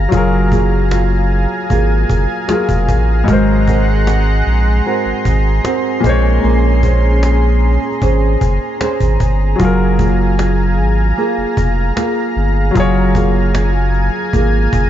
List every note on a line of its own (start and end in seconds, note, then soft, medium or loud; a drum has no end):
0.00 0.11 F#3 medium
0.00 0.51 A#3 medium
0.00 0.51 F4 medium
0.00 0.53 G#4 medium
0.00 14.90 G#4 medium
0.00 0.10 A#4 medium
0.00 3.24 F5 medium
0.00 3.24 A#5 medium
0.09 1.47 F#1 loud
0.09 2.43 F#3 medium
0.09 3.28 F#3 medium
0.09 2.45 F4 medium
0.09 3.25 G#5 medium
0.09 cajon bass loud
0.15 2.46 G#4 medium
0.15 2.48 A#4 medium
0.52 1.69 A#3 medium
0.52 0.90 F4 medium
0.52 1.71 G#4 medium
0.52 cajon bass medium
0.91 1.69 F4 medium
0.91 cajon slap loud
1.30 cajon slap soft
1.70 2.05 G#1 loud
1.70 2.49 A#3 medium
1.70 2.49 F4 medium
1.70 2.50 G#4 medium
1.70 cajon bass medium
2.10 2.27 F#1 medium
2.10 cajon bass loud
2.48 3.26 F#3 medium
2.48 3.67 A#3 medium
2.48 3.28 F4 medium
2.48 3.36 F4 medium
2.48 3.69 G#4 medium
2.48 3.29 G#4 medium
2.48 cajon slap loud
2.52 3.28 A#4 medium
2.69 2.90 F1 medium
2.69 cajon bass medium
2.89 3.23 A1 medium
2.89 cajon bass loud
3.24 5.98 G#2 medium
3.24 6.00 F#3 medium
3.24 6.01 F#5 medium
3.24 14.90 A#5 medium
3.24 9.55 C6 medium
3.28 4.42 G#1 loud
3.28 6.03 G#3 medium
3.28 6.01 A#4 medium
3.28 cajon bass loud
3.33 6.03 C5 medium
3.67 4.85 C4 medium
3.67 4.05 F#4 medium
3.67 4.87 A#4 medium
3.67 cajon bass medium
4.07 4.85 F#4 medium
4.07 cajon slap loud
4.46 4.81 A#1 medium
4.46 cajon slap soft
4.86 5.64 C4 medium
4.86 5.64 F#4 medium
4.86 5.65 A#4 medium
4.86 cajon slap soft
5.05 5.13 G#1 soft
5.25 5.60 G#1 medium
5.25 cajon bass medium
5.65 6.46 C4 medium
5.65 6.12 F#4 medium
5.65 6.84 A#4 medium
5.65 cajon slap loud
6.00 9.14 A#2 medium
6.00 9.15 G#3 medium
6.00 6.43 A#3 medium
6.00 9.56 C#4 medium
6.04 6.39 A#1 medium
6.04 9.17 C5 medium
6.04 cajon bass loud
6.09 9.18 C#5 medium
6.43 7.78 A#1 loud
6.43 9.93 A#3 medium
6.43 cajon slap soft
6.83 8.01 C#4 medium
6.83 7.22 G#4 medium
6.83 8.02 C5 medium
6.83 cajon bass medium
7.23 8.02 G#4 medium
7.23 cajon slap loud
7.62 cajon slap soft
7.72 cajon slap soft
7.82 cajon slap soft
7.92 cajon slap soft
8.02 8.36 G#1 medium
8.02 8.80 C#4 medium
8.02 8.81 G#4 medium
8.02 8.80 C5 medium
8.02 cajon bass medium
8.41 8.59 F#1 medium
8.41 cajon bass medium
8.80 9.99 C#4 medium
8.80 9.99 G#4 medium
8.80 9.68 C5 medium
8.80 cajon slap loud
9.00 9.18 G#1 medium
9.00 cajon bass medium
9.20 9.55 G1 medium
9.20 cajon bass medium
9.56 10.79 F#1 loud
9.56 12.69 F#3 medium
9.56 12.75 F#3 medium
9.56 12.71 F4 medium
9.56 14.90 F5 medium
9.56 12.72 G#5 medium
9.56 cajon bass loud
9.61 12.72 G#4 medium
9.61 12.74 A#4 medium
9.99 11.17 A#3 medium
9.99 10.37 F4 medium
9.99 11.18 G#4 medium
9.99 cajon bass medium
10.38 11.17 F4 medium
10.38 cajon slap loud
10.78 11.13 G#1 loud
10.78 cajon slap soft
11.17 11.96 A#3 medium
11.17 11.95 F4 medium
11.17 11.97 G#4 medium
11.17 cajon slap soft
11.37 11.45 F1 soft
11.57 11.92 F1 medium
11.57 cajon bass medium
11.96 13.14 A#3 medium
11.96 13.14 F4 medium
11.96 13.16 G#4 medium
11.96 cajon slap loud
12.36 12.71 G1 medium
12.71 14.90 F#3 medium
12.71 14.90 F4 medium
12.75 14.10 F#1 loud
12.75 14.90 F#3 medium
12.75 14.90 G#4 medium
12.75 14.90 G#5 medium
12.75 cajon bass loud
12.80 14.90 C#5 medium
13.15 14.33 A#3 medium
13.15 13.53 F4 medium
13.15 14.34 G#4 medium
13.15 cajon bass medium
13.54 14.32 F4 medium
13.54 cajon slap loud
13.93 cajon slap soft
14.33 14.68 G#1 loud
14.33 14.90 A#3 medium
14.33 14.90 F4 medium
14.33 14.90 G#4 medium
14.33 cajon bass medium
14.73 14.90 F#1 medium
14.73 cajon bass loud